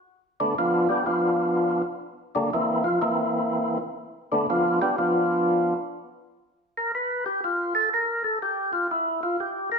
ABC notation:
X:1
M:4/4
L:1/8
Q:"Swing" 1/4=122
K:Gmix
V:1 name="Tonewheel organ"
z [D,A,B,D] [F,B,DF] [G,B,DG] [F,B,DF]3 z | z [D,G,_B,D] [E,B,CE] [F,F] [E,B,CE]3 z | z [D,A,B,D] [F,B,DF] [G,B,DG] [F,B,DF]3 z | z3 _B =B G F A |
_B A G F E F G B |]